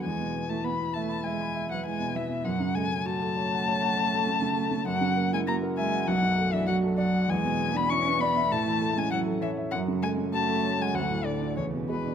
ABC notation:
X:1
M:4/4
L:1/16
Q:1/4=99
K:F#m
V:1 name="Violin"
g3 a b2 a2 g3 f g2 e2 | f2 g2 a12 | f3 g ^a2 g2 f3 e f2 f2 | g3 b c'2 b2 a3 g f2 e2 |
f2 g2 a3 g f2 d2 c2 B2 |]
V:2 name="Grand piano"
E,, B,, B, E B E e b e b e B E B,, B, B,, | F,, C, A, C F A c f c f c A C C, A, C, | F,, C, ^A, E F ^A e f B,,, F,, =A, D F =A d f | E,, B,, B, D E B d e A,, E, A, C E A c e |
F,, C, A, C F A c f D,, A,, A, D E,, B,, G, D |]
V:3 name="Cello" clef=bass
G,3 A, B,2 A,2 G,3 F, G,2 E,2 | F,2 G,2 A,12 | F,3 G, ^A,2 G,2 F,3 E, F,2 F,2 | G,3 B, C2 B,2 A,3 G, F,2 E,2 |
F,2 G,2 A,3 G, F,2 D,2 C,2 B,,2 |]